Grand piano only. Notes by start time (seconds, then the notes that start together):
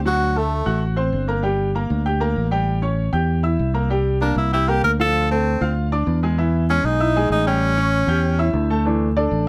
0.05 F#3 F#4 F#5
0.35 A3 A4 A5
0.66 F#4 F#5 F#6
0.96 C4 C5 C6
1.28 A#3 A#4 A#5
1.43 G3 G4 G5
1.75 A#3 A#4 A#5
2.06 G4 G5 G6
2.20 A#3 A#4 A#5
2.51 G3 G4 G5
2.82 C#4 C#5 C#6
3.13 G4 G5 G6
3.43 E4 E5 E6
3.74 A#3 A#4 A#5
3.90 G3 G4 G5
4.21 A#3 A#4 A#5
4.52 G4 G5 G6
4.68 A#3 A#4 A#5
4.99 F3 F4 F5
5.30 A3 A4 A5
5.61 F4 F5 F6
5.92 D4 D5 D6
6.23 G#3 G#4 G#5
6.38 E3 E4 E5
6.70 G#3 G#4 G#5
7.00 E4 E5 E6
7.16 G#3 G#4 G#5
7.46 G3 G4 G5
7.77 C#4 C#5 C#6
8.08 G4 G5 G6
8.39 E4 E5 E6
8.70 A3 A4 A5
8.85 E3 A3 D4
9.17 D4 A4 D5